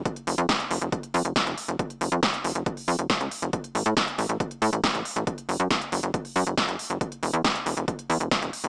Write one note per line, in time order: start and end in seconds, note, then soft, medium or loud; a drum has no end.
0.05 kick loud
0.05 closed hi-hat medium
0.16 closed hi-hat medium
0.27 0.36 F1 medium
0.27 open hi-hat loud
0.38 0.46 F2 medium
0.38 closed hi-hat medium
0.49 kick loud
0.49 snare loud
0.49 closed hi-hat medium
0.60 closed hi-hat medium
0.71 0.79 F1 loud
0.71 open hi-hat loud
0.82 0.90 F1 medium
0.82 closed hi-hat medium
0.92 kick loud
0.92 closed hi-hat medium
1.03 closed hi-hat medium
1.14 1.23 F2 loud
1.14 open hi-hat loud
1.25 1.33 F1 medium
1.25 closed hi-hat medium
1.36 kick loud
1.36 snare loud
1.36 closed hi-hat medium
1.47 1.55 F1 medium
1.47 closed hi-hat medium
1.58 open hi-hat loud
1.68 1.77 F1 medium
1.68 closed hi-hat medium
1.79 kick loud
1.79 closed hi-hat medium
1.90 closed hi-hat medium
2.01 2.09 F1 loud
2.01 open hi-hat loud
2.12 2.20 F2 medium
2.12 closed hi-hat soft
2.23 kick loud
2.23 snare loud
2.23 closed hi-hat medium
2.34 closed hi-hat soft
2.44 2.53 F1 medium
2.44 open hi-hat loud
2.55 2.64 F1 medium
2.55 closed hi-hat soft
2.66 kick loud
2.66 closed hi-hat medium
2.77 open hi-hat medium
2.88 2.96 F2 medium
2.88 open hi-hat loud
2.99 3.07 F1 medium
2.99 closed hi-hat medium
3.10 kick loud
3.10 snare loud
3.10 closed hi-hat medium
3.21 3.29 C#2 medium
3.21 closed hi-hat medium
3.31 open hi-hat loud
3.42 3.51 F1 medium
3.42 closed hi-hat soft
3.53 kick loud
3.53 closed hi-hat medium
3.64 closed hi-hat medium
3.75 3.83 A1 medium
3.75 open hi-hat loud
3.86 3.94 A2 medium
3.86 closed hi-hat medium
3.97 kick loud
3.97 snare loud
3.97 closed hi-hat medium
4.08 closed hi-hat medium
4.18 4.27 A1 loud
4.18 open hi-hat loud
4.29 4.38 A1 medium
4.29 closed hi-hat medium
4.40 kick loud
4.40 closed hi-hat medium
4.51 closed hi-hat medium
4.62 4.70 A2 medium
4.62 open hi-hat loud
4.73 4.81 A1 medium
4.73 closed hi-hat medium
4.84 kick loud
4.84 snare loud
4.84 closed hi-hat medium
4.94 5.03 A1 medium
4.94 closed hi-hat medium
5.05 open hi-hat loud
5.16 5.25 A1 medium
5.16 closed hi-hat medium
5.27 kick loud
5.27 closed hi-hat medium
5.38 closed hi-hat medium
5.49 5.57 F#1 loud
5.49 open hi-hat loud
5.60 5.68 F#2 medium
5.60 closed hi-hat medium
5.71 kick loud
5.71 snare loud
5.71 closed hi-hat medium
5.81 closed hi-hat medium
5.92 6.01 F#1 medium
5.92 open hi-hat loud
6.03 6.12 F#1 medium
6.03 closed hi-hat medium
6.14 kick loud
6.14 closed hi-hat medium
6.25 open hi-hat medium
6.36 6.44 F#2 loud
6.36 open hi-hat loud
6.47 6.55 F#1 medium
6.47 closed hi-hat medium
6.58 kick loud
6.58 snare loud
6.58 closed hi-hat medium
6.68 6.77 F#1 medium
6.68 closed hi-hat medium
6.79 open hi-hat loud
6.90 6.99 F#1 medium
6.90 closed hi-hat medium
7.01 kick loud
7.01 closed hi-hat medium
7.12 closed hi-hat medium
7.23 7.31 E1 loud
7.23 open hi-hat loud
7.33 7.42 E2 medium
7.33 closed hi-hat medium
7.44 kick loud
7.44 snare loud
7.44 closed hi-hat medium
7.55 closed hi-hat medium
7.66 7.75 E1 medium
7.66 open hi-hat loud
7.77 7.85 E1 medium
7.77 closed hi-hat medium
7.88 kick loud
7.88 closed hi-hat medium
7.99 closed hi-hat medium
8.10 8.18 E2 medium
8.10 open hi-hat loud
8.20 8.29 E1 medium
8.20 closed hi-hat medium
8.31 kick loud
8.31 snare loud
8.31 closed hi-hat medium
8.42 8.51 E1 medium
8.42 closed hi-hat medium
8.53 open hi-hat loud
8.64 8.68 E1 medium
8.64 closed hi-hat medium